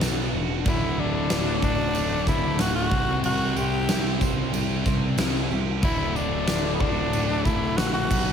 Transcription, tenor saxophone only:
0, 0, Header, 1, 2, 480
1, 0, Start_track
1, 0, Tempo, 647249
1, 494, Time_signature, 4, 2, 24, 8
1, 6175, End_track
2, 0, Start_track
2, 0, Title_t, "Tenor saxophone"
2, 0, Program_c, 0, 66
2, 509, Note_on_c, 0, 64, 87
2, 738, Note_on_c, 0, 62, 88
2, 749, Note_off_c, 0, 64, 0
2, 1208, Note_off_c, 0, 62, 0
2, 1213, Note_on_c, 0, 62, 102
2, 1660, Note_off_c, 0, 62, 0
2, 1693, Note_on_c, 0, 64, 95
2, 1932, Note_on_c, 0, 66, 100
2, 1943, Note_off_c, 0, 64, 0
2, 2038, Note_off_c, 0, 66, 0
2, 2042, Note_on_c, 0, 66, 109
2, 2379, Note_off_c, 0, 66, 0
2, 2415, Note_on_c, 0, 66, 115
2, 2643, Note_on_c, 0, 67, 100
2, 2654, Note_off_c, 0, 66, 0
2, 3124, Note_off_c, 0, 67, 0
2, 4327, Note_on_c, 0, 64, 93
2, 4564, Note_on_c, 0, 62, 84
2, 4575, Note_off_c, 0, 64, 0
2, 4996, Note_off_c, 0, 62, 0
2, 5003, Note_on_c, 0, 59, 65
2, 5044, Note_on_c, 0, 62, 92
2, 5055, Note_off_c, 0, 59, 0
2, 5522, Note_on_c, 0, 64, 95
2, 5533, Note_off_c, 0, 62, 0
2, 5764, Note_on_c, 0, 66, 88
2, 5776, Note_off_c, 0, 64, 0
2, 5880, Note_off_c, 0, 66, 0
2, 5885, Note_on_c, 0, 66, 104
2, 6175, Note_off_c, 0, 66, 0
2, 6175, End_track
0, 0, End_of_file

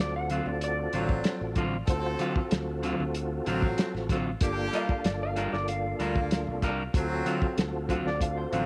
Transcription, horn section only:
0, 0, Header, 1, 2, 480
1, 0, Start_track
1, 0, Tempo, 632244
1, 1428, Time_signature, 4, 2, 24, 8
1, 6573, End_track
2, 0, Start_track
2, 0, Title_t, "Horn section"
2, 0, Program_c, 0, 61
2, 697, Note_on_c, 0, 60, 82
2, 701, Note_on_c, 0, 54, 90
2, 1066, Note_off_c, 0, 60, 0
2, 1068, Note_off_c, 0, 54, 0
2, 1409, Note_on_c, 0, 60, 95
2, 1411, Note_on_c, 0, 69, 104
2, 1899, Note_off_c, 0, 60, 0
2, 1900, Note_off_c, 0, 69, 0
2, 2625, Note_on_c, 0, 60, 97
2, 2630, Note_on_c, 0, 54, 107
2, 2990, Note_off_c, 0, 60, 0
2, 2993, Note_off_c, 0, 54, 0
2, 3346, Note_on_c, 0, 65, 87
2, 3347, Note_on_c, 0, 58, 98
2, 3351, Note_on_c, 0, 67, 106
2, 3828, Note_off_c, 0, 58, 0
2, 3828, Note_off_c, 0, 65, 0
2, 3830, Note_off_c, 0, 67, 0
2, 4555, Note_on_c, 0, 65, 78
2, 4556, Note_on_c, 0, 58, 83
2, 4916, Note_off_c, 0, 58, 0
2, 4916, Note_off_c, 0, 65, 0
2, 5271, Note_on_c, 0, 60, 98
2, 5274, Note_on_c, 0, 54, 106
2, 5750, Note_off_c, 0, 60, 0
2, 5752, Note_off_c, 0, 54, 0
2, 6470, Note_on_c, 0, 60, 83
2, 6475, Note_on_c, 0, 54, 92
2, 6573, Note_off_c, 0, 54, 0
2, 6573, Note_off_c, 0, 60, 0
2, 6573, End_track
0, 0, End_of_file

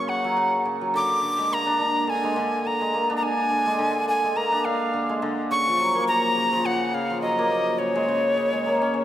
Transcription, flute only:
0, 0, Header, 1, 2, 480
1, 0, Start_track
1, 0, Tempo, 571429
1, 790, Time_signature, 4, 2, 24, 8
1, 7597, End_track
2, 0, Start_track
2, 0, Title_t, "Flute"
2, 0, Program_c, 0, 73
2, 0, Note_on_c, 0, 85, 104
2, 74, Note_on_c, 0, 78, 88
2, 86, Note_off_c, 0, 85, 0
2, 566, Note_off_c, 0, 78, 0
2, 808, Note_on_c, 0, 86, 119
2, 1289, Note_on_c, 0, 82, 120
2, 1302, Note_off_c, 0, 86, 0
2, 1761, Note_on_c, 0, 80, 100
2, 1774, Note_off_c, 0, 82, 0
2, 2242, Note_on_c, 0, 82, 104
2, 2255, Note_off_c, 0, 80, 0
2, 2653, Note_off_c, 0, 82, 0
2, 2659, Note_on_c, 0, 82, 69
2, 2714, Note_on_c, 0, 80, 102
2, 2727, Note_off_c, 0, 82, 0
2, 3427, Note_off_c, 0, 80, 0
2, 3432, Note_on_c, 0, 80, 94
2, 3669, Note_on_c, 0, 82, 88
2, 3681, Note_off_c, 0, 80, 0
2, 3905, Note_on_c, 0, 77, 84
2, 3917, Note_off_c, 0, 82, 0
2, 4402, Note_off_c, 0, 77, 0
2, 4631, Note_on_c, 0, 85, 123
2, 5076, Note_off_c, 0, 85, 0
2, 5109, Note_on_c, 0, 82, 111
2, 5591, Note_on_c, 0, 78, 97
2, 5604, Note_off_c, 0, 82, 0
2, 5832, Note_on_c, 0, 77, 98
2, 5845, Note_off_c, 0, 78, 0
2, 6058, Note_off_c, 0, 77, 0
2, 6063, Note_on_c, 0, 75, 92
2, 6540, Note_on_c, 0, 73, 95
2, 6552, Note_off_c, 0, 75, 0
2, 7597, Note_off_c, 0, 73, 0
2, 7597, End_track
0, 0, End_of_file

